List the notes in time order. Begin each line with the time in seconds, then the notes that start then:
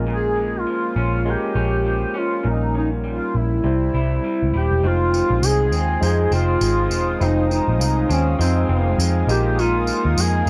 Already playing: A#1 G#3 C#4 F4 A#4
0.07 A#2
0.13 G#4
0.36 G#3
0.60 F4
0.67 F3
0.96 A#1 C#4
1.25 G#3 C#4 F4 A#4
1.31 G4
1.55 A#1 C#4
1.86 F3
2.14 C#4
2.19 F4
2.43 A#1 A#2 G3 C#4 D#4 A#4
2.49 D#4
2.75 C#4 D#4
3.04 G3 F4
3.35 A#1 E4
3.64 C2 C3 G3 C4 E4 C5
3.94 C2 E4
4.24 G3
4.43 C#2
4.54 D#1 E4 G4
4.71 E1
4.83 F1 F2 G#3 C4 D#4 F4 C5 F5 G#5 D#6
4.87 F4
5.14 D#3, tambourine
5.30 A#1
5.42 C2 G#3, tambourine
5.46 G#4
5.72 D#2 C4, tambourine
6.01 F2 G#3 D#4 F4 C5, tambourine
6.05 G#4
6.31 F1 C4 F4, tambourine
6.61 G#1 G#3, tambourine
6.90 E1 D#3, tambourine
7.20 F1 F2 G#3 C4 D#4 F4 C5, tambourine
7.24 D#4
7.50 D#3 D#4, tambourine
7.68 A#1
7.80 C2 G#3, tambourine
8.09 D#2 C4 C#4, tambourine
8.39 F2 G#3 C4 D#4 F4 C5, tambourine
8.69 F1 C4
8.98 F2 G#3, tambourine
9.27 A#1 A#2 G#3 D#4 F4 G4 A#4 D#6, tambourine
9.59 A#2 D#4 F4, tambourine
9.87 F3, tambourine
10.05 D#2
10.17 F2 G#3 G#4, tambourine
10.46 G2